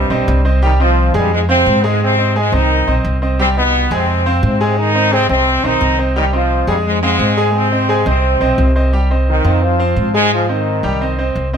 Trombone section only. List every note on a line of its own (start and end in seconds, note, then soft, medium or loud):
0.00 0.42 G2 medium
0.00 0.42 G3 medium
0.64 0.72 D#3 medium
0.64 0.72 D#4 medium
0.82 1.13 F3 loud
0.82 1.13 F4 medium
1.16 1.33 G2 medium
1.16 1.33 G3 medium
1.34 1.41 G#2 medium
1.34 1.41 G#3 loud
1.51 1.83 C3 medium
1.51 1.82 C4 loud
1.86 2.02 G#2 medium
1.86 2.02 G#3 loud
2.03 2.34 C3 medium
2.03 2.34 C4 loud
2.38 2.54 G#2 medium
2.38 2.54 G#3 loud
2.55 2.96 D#3 medium
2.55 2.96 D#4 loud
3.41 3.49 C3 medium
3.41 3.48 C4 loud
3.58 3.90 B2 medium
3.58 3.90 B3 loud
3.93 4.44 C3 medium
3.93 4.43 C4 loud
4.44 4.76 C3 medium
4.44 4.76 C4 loud
4.79 5.13 D#3 medium
4.79 5.13 D#4 loud
5.13 5.31 C3 medium
5.13 5.29 C4 loud
5.30 5.63 C3 medium
5.30 5.62 C4 loud
5.65 6.00 D#3 medium
5.65 5.99 D#4 loud
6.17 6.24 D#3 loud
6.17 6.26 D#4 medium
6.34 6.66 F3 loud
6.34 6.67 F4 medium
6.69 6.78 G2 medium
6.69 6.77 G3 medium
6.86 7.03 G#2 medium
6.86 7.02 G#3 loud
7.03 7.52 G#2 medium
7.03 7.51 G#3 loud
7.55 8.07 C3 medium
7.55 8.06 C4 loud
8.08 8.73 C3 medium
8.08 8.72 C4 medium
9.29 9.60 D#3 loud
9.29 9.61 D#4 medium
9.63 9.96 F3 loud
9.63 9.98 F4 medium
9.98 10.13 F3 medium
9.98 10.14 F4 medium
10.15 10.32 G#2 medium
10.15 10.31 G#3 loud
10.33 10.48 F3 loud
10.33 10.49 F4 medium
10.50 11.15 D#3 medium
10.50 11.16 D#4 medium